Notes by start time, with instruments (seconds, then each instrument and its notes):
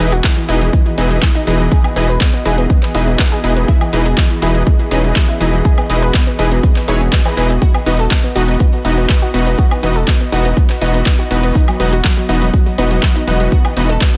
Already playing: analog synth pad E3 B3 F#4 G#4 D#5
0.00 analog synth bass E1, supersaw synth E3 D#4 E4 G#4 B4 D#5
0.12 synth pluck F#4, closed hi-hat, shaker
0.24 synth pluck E3, kick, clap, closed hi-hat, shaker
0.37 synth pluck E3, closed hi-hat, shaker
0.49 analog synth bass E1, supersaw synth E3 D#4 E4 G#4 B4 D#5, synth pluck D#4, open hi-hat, shaker
0.61 synth pluck E3, closed hi-hat, shaker
0.73 synth pluck E3, kick, closed hi-hat, shaker
0.86 synth pluck E3, closed hi-hat, shaker
0.98 analog synth bass E1, supersaw synth E3 D#4 E4 G#4 B4 D#5, synth pluck B3, open hi-hat, shaker
1.11 synth pluck E3, closed hi-hat, shaker
1.22 synth pluck E3, kick, clap, closed hi-hat, shaker
1.35 synth pluck D#4, closed hi-hat, shaker
1.47 analog synth bass E1, synth pluck E3, supersaw synth E3 D#4 E4 G#4 B4 D#5, open hi-hat, shaker
1.60 synth pluck E3, closed hi-hat, shaker
1.72 synth pluck G#4, kick, closed hi-hat, shaker
1.84 synth pluck B3, closed hi-hat, high woodblock, shaker
1.96 analog synth bass E1, supersaw synth E3 D#4 E4 G#4 B4 D#5, synth pluck B3, open hi-hat, shaker
2.09 synth pluck B4, closed hi-hat, shaker
2.21 synth pluck B3, kick, clap, closed hi-hat, shaker
2.34 synth pluck B3, closed hi-hat, shaker
2.45 analog synth bass E1, supersaw synth E3 D#4 E4 G#4 B4 D#5, synth pluck G#4, open hi-hat, shaker
2.58 synth pluck B3, closed hi-hat, shaker
2.70 synth pluck B3, kick, closed hi-hat, shaker
2.83 synth pluck B3, clap, closed hi-hat, shaker
2.95 analog synth bass E1, supersaw synth E3 D#4 E4 G#4 B4 D#5, synth pluck E4, open hi-hat, shaker
3.07 synth pluck B3, closed hi-hat, shaker
3.19 synth pluck B3, kick, clap, closed hi-hat, shaker
3.32 synth pluck G#4, closed hi-hat, shaker
3.44 analog synth bass E1, supersaw synth E3 D#4 E4 G#4 B4 D#5, synth pluck B3, open hi-hat, shaker
3.56 synth pluck B3, closed hi-hat, shaker
3.68 synth pluck E4, kick, closed hi-hat, shaker
3.81 synth pluck E3, closed hi-hat, high woodblock, shaker
3.93 analog synth bass E1, synth pluck E3, supersaw synth E3 D#4 E4 G#4 B4 D#5, open hi-hat, shaker
4.06 synth pluck G#4, closed hi-hat, shaker
4.17 synth pluck E3, kick, clap, closed hi-hat, shaker
4.30 synth pluck E3, closed hi-hat, shaker
4.42 analog synth bass E1, supersaw synth E3 D#4 E4 G#4 B4 D#5, synth pluck E4, open hi-hat, shaker
4.55 synth pluck E3, closed hi-hat, shaker
4.67 synth pluck E3, kick, closed hi-hat, shaker
4.79 synth pluck E3, closed hi-hat, shaker
4.91 analog synth bass E1, supersaw synth E3 D#4 E4 G#4 B4 D#5, synth pluck C#4, open hi-hat, shaker
5.04 synth pluck E3, closed hi-hat, shaker
5.16 synth pluck E3, kick, clap, closed hi-hat, shaker
5.29 synth pluck E4, closed hi-hat, shaker
5.40 analog synth bass E1, synth pluck E3, supersaw synth E3 D#4 E4 G#4 B4 D#5, open hi-hat, shaker
5.53 synth pluck E3, closed hi-hat, shaker
5.65 synth pluck G#4, kick, closed hi-hat, shaker
5.78 synth pluck B3, closed hi-hat, high woodblock, shaker
5.90 analog synth bass E1, supersaw synth E3 D#4 E4 G#4 B4 D#5, synth pluck B3, open hi-hat, shaker
6.02 synth pluck B4, closed hi-hat, shaker
6.14 synth pluck B3, kick, clap, closed hi-hat, shaker
6.27 synth pluck B3, closed hi-hat, shaker
6.39 analog synth bass E1, supersaw synth E3 D#4 E4 G#4 B4 D#5, synth pluck G#4, open hi-hat, shaker
6.52 synth pluck B3, closed hi-hat, shaker
6.63 synth pluck B3, kick, closed hi-hat, shaker
6.76 synth pluck B3, clap, closed hi-hat, shaker
6.88 analog synth bass E1, supersaw synth E3 D#4 E4 G#4 B4 C#5, synth pluck G#4, open hi-hat, shaker
7.01 synth pluck B3, closed hi-hat, shaker
7.13 synth pluck B3, kick, clap, closed hi-hat, shaker
7.25 supersaw synth E3 D#4 E4 G#4 B4 D#5, synth pluck B4, closed hi-hat, high woodblock, shaker
7.37 analog synth bass E1, supersaw synth E3 D#4 E4 G#4 B4 D#5, synth pluck B3, open hi-hat, shaker
7.50 synth pluck B3, closed hi-hat, shaker
7.62 analog synth pad B3, synth pluck F#4, kick, closed hi-hat, shaker
7.74 synth pluck B3, closed hi-hat, high woodblock, shaker
7.86 analog synth bass E1, supersaw synth E3 B3 D#4 F#4 B4 D#5, synth pluck B3, open hi-hat, shaker
7.99 synth pluck A4, closed hi-hat, shaker
8.11 synth pluck B3, kick, clap, closed hi-hat, shaker
8.24 synth pluck B3, closed hi-hat, shaker
8.36 analog synth bass E1, supersaw synth E3 B3 D#4 F#4 B4 D#5, synth pluck F#4, open hi-hat, shaker
8.48 synth pluck B3, closed hi-hat, shaker
8.60 synth pluck B3, kick, closed hi-hat, shaker
8.73 synth pluck B3, closed hi-hat, shaker
8.85 analog synth bass E1, supersaw synth E3 B3 D#4 F#4 B4 D#5, synth pluck D#4, open hi-hat, shaker
8.97 synth pluck B3, closed hi-hat, shaker
9.09 synth pluck B3, kick, clap, closed hi-hat, shaker
9.22 synth pluck F#4, closed hi-hat, shaker
9.34 analog synth bass E1, supersaw synth E3 B3 D#4 F#4 B4 D#5, synth pluck B3, open hi-hat, shaker
9.47 synth pluck B3, closed hi-hat, shaker
9.59 synth pluck F#4, kick, closed hi-hat, shaker
9.71 synth pluck B3, closed hi-hat, high woodblock, shaker
9.83 analog synth bass E1, supersaw synth E3 B3 D#4 F#4 B4 D#5, synth pluck B3, open hi-hat, shaker
9.96 synth pluck A4, closed hi-hat, shaker
10.08 synth pluck B3, kick, clap, closed hi-hat, shaker
10.20 synth pluck B3, closed hi-hat, shaker
10.32 analog synth bass E1, supersaw synth E3 B3 D#4 F#4 B4 D#5, synth pluck F#4, open hi-hat, shaker
10.45 synth pluck B3, closed hi-hat, shaker
10.57 synth pluck B3, kick, closed hi-hat, shaker
10.70 synth pluck B3, clap, closed hi-hat, shaker
10.81 analog synth bass E1, supersaw synth E3 B3 D#4 F#4 B4 D#5, synth pluck D#4, open hi-hat, shaker
10.94 synth pluck B3, closed hi-hat, shaker
11.06 synth pluck B3, kick, clap, closed hi-hat, shaker
11.19 synth pluck F#4, closed hi-hat, shaker
11.31 analog synth bass E1, supersaw synth E3 B3 D#4 F#4 B4 D#5, synth pluck B3, open hi-hat, shaker
11.43 synth pluck B3, closed hi-hat, shaker
11.55 synth pluck D#4, kick, closed hi-hat, shaker
11.68 synth pluck F#3, closed hi-hat, high woodblock, shaker
11.80 analog synth bass E1, supersaw synth E3 B3 D#4 F#4 B4 D#5, synth pluck F#3, open hi-hat, shaker
11.93 synth pluck F#4, closed hi-hat, shaker
12.04 synth pluck F#3, kick, clap, closed hi-hat, shaker
12.17 synth pluck F#3, closed hi-hat, shaker
12.29 analog synth bass E1, supersaw synth E3 B3 D#4 F#4 B4 D#5, synth pluck D#4, open hi-hat, shaker
12.42 synth pluck F#3, closed hi-hat, shaker
12.54 synth pluck F#3, kick, closed hi-hat, shaker
12.66 synth pluck F#3, closed hi-hat, shaker
12.78 analog synth bass E1, supersaw synth E3 B3 D#4 F#4 B4 D#5, synth pluck B3, open hi-hat, shaker
12.91 synth pluck F#3, closed hi-hat, shaker
13.03 synth pluck F#3, kick, clap, closed hi-hat, shaker
13.16 synth pluck D#4, closed hi-hat, shaker
13.27 analog synth bass E1, supersaw synth E3 B3 D#4 F#4 B4 D#5, synth pluck F#3, open hi-hat, shaker
13.40 synth pluck F#3, closed hi-hat, shaker
13.52 synth pluck F#4, kick, closed hi-hat, shaker
13.65 synth pluck B3, closed hi-hat, high woodblock, shaker
13.77 analog synth bass E1, supersaw synth E3 B3 D#4 F#4 B4 D#5, synth pluck B3, open hi-hat, shaker
13.89 synth pluck A4, closed hi-hat, shaker
14.01 synth pluck B3, kick, clap, closed hi-hat, shaker
14.14 synth pluck B3, closed hi-hat